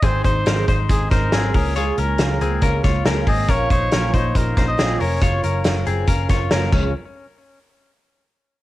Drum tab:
CC |--------|--------|--------|-------x|
HH |xxxxxxxo|xxxxxxxo|xxxxxxxo|xxxxxxx-|
SD |--o--oo-|--o--oo-|--o--oo-|--o--oo-|
BD |oo-ooo-o|----oo-o|oo-ooo--|o---oo-o|

CC |--------|
HH |--------|
SD |--------|
BD |--------|